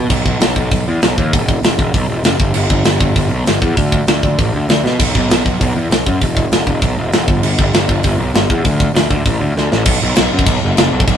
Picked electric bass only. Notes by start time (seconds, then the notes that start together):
0.10 B1
0.25 B1
0.41 B1
0.56 B1
0.72 B1
0.88 E2
1.02 B1
1.18 D#2
1.33 E1
1.62 E1
1.79 E1
1.94 B1
2.08 E1
2.24 F#1
2.40 G1
2.54 G1
2.70 G1
2.85 G1
3.00 G1
3.16 G1
3.30 B1
3.45 G1
3.62 E2
3.77 D2
4.08 D2
4.23 D2
4.39 A1
4.54 D2
4.69 D2
4.84 B2
4.99 B1
5.15 B1
5.29 B1
5.45 B1
5.61 B1
5.75 E2
5.90 B1
6.07 F#2
6.22 E1
6.52 E1
6.67 E1
6.82 B1
6.98 E1
7.13 E1
7.28 G1
7.43 G1
7.59 G1
7.74 G1
7.89 G1
8.04 G1
8.18 B1
8.34 G1
8.50 E2
8.65 D2
8.94 D2
9.10 D2
9.26 A1
9.40 D2
9.57 D2
9.72 A1
9.86 B1
10.02 B1
10.18 B1
10.33 F#2
10.46 B1
10.63 F#1
10.78 F#1
10.92 B1
11.08 B1